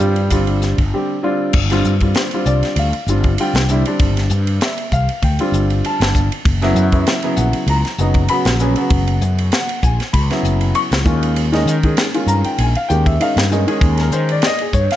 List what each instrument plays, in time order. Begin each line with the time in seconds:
Already playing: grand piano D3 G3 C4 F4, tenor saxophone G3
0.00 fretless electric bass G2, hi-hat pedal
0.16 ride
0.30 fretless electric bass G1, grand piano D3 G3 C4 F4, kick, hi-hat pedal, ride
0.47 ride
0.62 snare, hi-hat pedal
0.78 fretless electric bass G1, kick, ride
0.94 grand piano D3 G3 C4 G4 G5
1.23 grand piano D3 G3 C4 F4 D5
1.53 fretless electric bass G1, kick, crash
1.70 grand piano D3 G3 C4 F4, snare, ride
1.84 fretless electric bass G2, hi-hat pedal
2.00 grand piano D3 G3 C4 F4, kick, ride
2.15 grand piano C5, snare, ride
2.31 grand piano D3 G3 C4 F4, ride
2.46 fretless electric bass C2, grand piano D5, hi-hat pedal
2.62 muted fretless electric bass stroke, snare, ride
2.76 fretless electric bass D2, grand piano F5, ride
2.92 muted fretless electric bass stroke, ride
3.07 fretless electric bass G1, grand piano D3 G3 C4 F4, hi-hat pedal
3.24 kick, ride
3.38 grand piano D3 G3 C4 F4 G5, ride
3.54 fretless electric bass C2, snare, ride
3.68 grand piano D3 G3 C4 E4, hi-hat pedal
3.86 grand piano D3 G3 C4 D4, ride
3.99 fretless electric bass G1, kick, ride
4.17 snare, ride
4.30 fretless electric bass G2, hi-hat pedal
4.47 ride
4.61 grand piano E5, snare, ride
4.78 ride
4.92 fretless electric bass C2, grand piano F5, kick, hi-hat pedal
5.08 muted fretless electric bass stroke, ride
5.22 fretless electric bass D2, grand piano G5, kick, ride
5.39 grand piano D3 G3 C4 F4, muted fretless electric bass stroke, ride
5.52 fretless electric bass G1, hi-hat pedal
5.70 ride
5.85 grand piano A5, ride
6.00 fretless electric bass G1, snare, ride
6.15 kick, hi-hat pedal
6.32 ride
6.45 fretless electric bass F#1, kick, ride
6.62 grand piano C#3 F#3 B3 E4, snare, ride
6.75 fretless electric bass F#2, hi-hat pedal
6.92 grand piano C#3 F#3 B3 E4, kick, ride
7.07 grand piano E5, snare, ride
7.22 grand piano C#3 F#3 B3 E4, ride
7.36 fretless electric bass A#1, grand piano F#5, hi-hat pedal
7.53 muted fretless electric bass stroke, ride
7.67 fretless electric bass C#2, grand piano A#5, ride
7.84 muted fretless electric bass stroke, snare, ride
7.98 fretless electric bass F#1, grand piano C#3 F#3 B3 D#4, hi-hat pedal
8.14 kick, ride
8.29 grand piano C#3 F#3 B3 F#4 B5, ride
8.45 fretless electric bass A#1, snare, ride
8.59 grand piano C#3 F#3 B3 C#4, hi-hat pedal
8.76 grand piano C#3 F#3 B3 F#4, ride
8.90 fretless electric bass F#1, kick, ride
9.07 ride
9.21 fretless electric bass F#2, hi-hat pedal
9.38 ride
9.52 grand piano F#5, snare, ride
9.69 ride
9.83 fretless electric bass A#1, grand piano G#5, kick, hi-hat pedal
9.99 muted fretless electric bass stroke, snare, ride
10.13 fretless electric bass C#2, grand piano B5, kick, ride
10.29 grand piano C#3 F#3 B3 E4, muted fretless electric bass stroke, snare, ride
10.43 fretless electric bass F#1, hi-hat pedal
10.61 ride
10.75 grand piano C#6, ride
10.91 fretless electric bass C#2, snare, ride
11.05 fretless electric bass D#2, grand piano D#3 G#3 C#4 F4, kick, hi-hat pedal
11.23 ride
11.36 ride
11.52 grand piano D#3 G#3 C#4 D#4, snare, ride
11.66 fretless electric bass D#3, hi-hat pedal
11.83 grand piano D#3 G#3 C#4 G#4, kick, ride
11.97 snare, ride
12.14 grand piano D#3 G#3 C#4 F4, ride
12.26 fretless electric bass G2, grand piano A#5, hi-hat pedal
12.44 grand piano G5, muted fretless electric bass stroke, ride
12.58 fretless electric bass A#1, grand piano G#5, ride
12.75 grand piano F5, ride
12.89 fretless electric bass D#2, grand piano D#3 G#3 C#4 G4 G5, hi-hat pedal
13.06 grand piano E5, kick, ride
13.20 grand piano D#3 G#3 C#4 D#4 F5, ride
13.36 fretless electric bass G2, snare, ride
13.51 grand piano D#3 G#3 C#4 D#4, hi-hat pedal
13.67 grand piano D#3 G#3 C#4 G#4, ride
13.81 fretless electric bass D#2, kick, ride
13.97 grand piano A#4, snare, ride
14.11 fretless electric bass D#3, grand piano C5, hi-hat pedal
14.29 grand piano D5, ride
14.42 snare, ride
14.46 grand piano D#5
14.59 grand piano G#4, ride
14.73 fretless electric bass G2, grand piano C#5, kick, hi-hat pedal
14.89 grand piano F5, muted fretless electric bass stroke, snare, ride